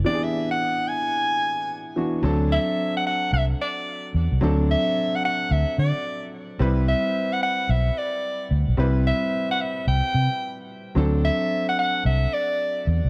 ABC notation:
X:1
M:4/4
L:1/16
Q:"Swing 16ths" 1/4=110
K:Dmix
V:1 name="Soprano saxophone"
d e2 f3 ^g8 z2 | z2 e3 f f2 e2 d4 z2 | z2 e3 f f2 e2 d4 z2 | z2 e3 f f2 e2 d4 z2 |
z2 e3 f e2 g6 z2 | z2 e3 f f2 e2 d4 z2 |]
V:2 name="Grand piano"
[E,B,DG^G]12- [E,B,D=G^G]2 [E,B,DF]2 | [F,CDA]16 | [F,CDA]16 | [G,CEB]16 |
[G,CEB]16 | [F,CDA]16 |]
V:3 name="Fingered electric bass" clef=bass
z16 | D,,3 z4 z C,,2 z4 E,, C,, | D,,3 z4 z D,, z D, z4 z | C,,3 z4 z B,,,2 z4 D,, B,,, |
C,,3 z4 z C,, z C, z4 z | D,,3 z4 z C,,2 z4 E,, C,, |]